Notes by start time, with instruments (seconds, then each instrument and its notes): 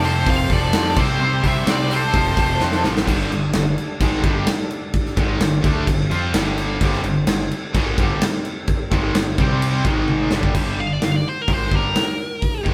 Already playing: picked electric bass F1, tonewheel organ F4 C5 G5
0.04 distorted electric guitar F2 C3 F3, lead electric guitar A4 C5, open hi-hat
0.26 picked electric bass F1, distorted electric guitar F2 C3 F3, lead electric guitar C5 F5, kick, open hi-hat
0.49 picked electric bass F1, distorted electric guitar F2 C3 F3, lead electric guitar A4 D5, kick, open hi-hat
0.72 picked electric bass F2, distorted electric guitar F2 C3 F3, snare, open hi-hat
0.95 picked electric bass C2, distorted electric guitar C3 G3 C4, tonewheel organ C4 G4 D5, lead electric guitar G4, kick, crash
1.00 lead electric guitar C5
1.19 picked electric bass C2, distorted electric guitar C3 G3 C4
1.43 picked electric bass C2, distorted electric guitar C3 G3 C4, lead electric guitar C5, kick, open hi-hat
1.47 lead electric guitar E5
1.66 picked electric bass C2, distorted electric guitar C3 G3 C4, snare, open hi-hat
1.70 lead electric guitar G4 D5
1.90 distorted electric guitar C3 G3 C4, lead electric guitar C5, open hi-hat
1.95 lead electric guitar A4
2.13 picked electric bass F1, distorted electric guitar F2 C3 F3, tonewheel organ F4 C5 G5, kick, open hi-hat
2.36 picked electric bass F1, distorted electric guitar F2 C3 F3, kick, open hi-hat
2.60 distorted electric guitar F2 C3 F3, picked electric bass F2, snare
2.72 snare
2.84 picked electric bass A1, distorted electric guitar F2 C3 F3, snare
2.97 snare
3.07 picked electric bass G1, distorted electric guitar G2 D3 G3, tonewheel organ G3 D4 A4, kick, crash
3.20 snare
3.32 picked electric bass G1, distorted electric guitar G2 D3, crash
3.53 picked electric bass G1, distorted electric guitar G2 D3, snare, crash
3.78 crash
4.00 picked electric bass G#1, distorted electric guitar G#2 D#3 G#3, kick, crash
4.23 picked electric bass G1, distorted electric guitar G2 D3 G3, kick, crash
4.47 snare, crash
4.71 crash
4.93 kick, crash
5.06 snare
5.16 picked electric bass G#1, distorted electric guitar G#2 D#3 G#3, kick, crash
5.40 picked electric bass G1, distorted electric guitar G2 D3, snare, crash
5.61 picked electric bass D2, distorted electric guitar D3 A3 D4, kick, crash
5.86 picked electric bass G1, distorted electric guitar G2 D3, tonewheel organ C4, kick, crash
6.10 picked electric bass F2, distorted electric guitar F3 C4 F4, crash
6.32 picked electric bass G1, distorted electric guitar G2 D3 G3, snare, crash
6.58 crash
6.81 picked electric bass G1, distorted electric guitar G2 D3 G3, kick, crash
6.93 snare
7.03 picked electric bass G1, distorted electric guitar G2 D3, crash
7.27 picked electric bass G1, distorted electric guitar G2 D3, snare, crash
7.51 crash
7.73 picked electric bass G#1, distorted electric guitar G#2 D#3 G#3, kick, crash
7.97 picked electric bass G1, distorted electric guitar G2 D3 G3, kick, crash
8.21 snare, crash
8.45 crash
8.67 kick, crash
8.91 picked electric bass G#1, distorted electric guitar G#2 D#3 G#3, kick, crash
9.13 picked electric bass G1, distorted electric guitar G2 D3, snare, crash
9.38 picked electric bass C2, distorted electric guitar C3 G3 C4, tonewheel organ G4 D5, kick, crash
9.62 crash
9.84 picked electric bass G#1, distorted electric guitar G#2 D#3 G#3, tonewheel organ G#3 D#4 A#4, kick, crash
10.08 high tom
10.31 picked electric bass G1, distorted electric guitar G2 D3 G3, tonewheel organ G3 D4 A4, snare
10.43 kick
10.54 picked electric bass G1, distorted electric guitar G2 D3 G3, kick, crash
10.77 picked electric bass G1, distorted electric guitar G2 D3, lead electric guitar F5
10.93 lead electric guitar D5
11.00 picked electric bass G1, distorted electric guitar G2 D3, snare, open hi-hat
11.05 lead electric guitar F5
11.16 lead electric guitar D5
11.29 lead electric guitar C5
11.42 lead electric guitar A#4
11.48 picked electric bass G#1, distorted electric guitar G#2 D#3 G#3, kick, open hi-hat
11.54 lead electric guitar C5
11.71 picked electric bass G1, distorted electric guitar G2 D3 G3, kick
11.77 lead electric guitar A#4
11.95 snare, open hi-hat
12.42 kick, open hi-hat
12.64 picked electric bass G#1, distorted electric guitar G#2 D#3 G#3, kick